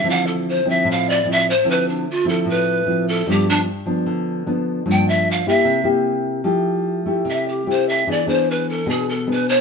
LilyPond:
<<
  \new Staff \with { instrumentName = "Pan flute" } { \time 4/4 \key d \dorian \tempo 4 = 150 f''8 a'8 c''8 e''8 f''8 d''8 e''8 c''8 | b'8 d'8 f'8 a'8 b'4. a'8 | g'8 d'8 r2. | g''8 e''8 f''8 e''4 r4. |
\key f \lydian r2 e''8 g'8 c''8 e''8 | d''8 c''8 b'8 a'8 gis'8 a'8 b'8 c''8 | }
  \new Staff \with { instrumentName = "Nylon-string guitar" } { \time 4/4 \key d \dorian << { <f c' e'>4. <f c' e'>4. <f c' e'>8 r8 | <f c' e'>4 r8 <f c' e'>4. <f c' e'>4 | <f b d'>4 r8 <f b d'>4. <f b d'>4 | <f bes d'>4. <bes e' g'>4 <bes e' g'>4. |
\key f \lydian <a e' g'>4. <a e' g'>4. <a e' g'>4 | <b d' gis'>8 <b d' gis'>4. <b d' gis'>8 r8 <b d' gis'>4 | } \\ { d2 a,2 | d2 a,2 | g,2 d2 | g,2 c2 |
f2 c2 | e2 b,2 | } >> }
>>